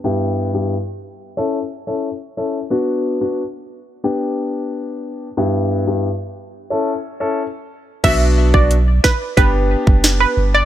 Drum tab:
CC |----------------|----------------|----------------|x---------------|
HH |----------------|----------------|----------------|x---x---x---x---|
SD |----------------|----------------|----------------|------o-----o---|
BD |----------------|----------------|----------------|o--o--o-o--o----|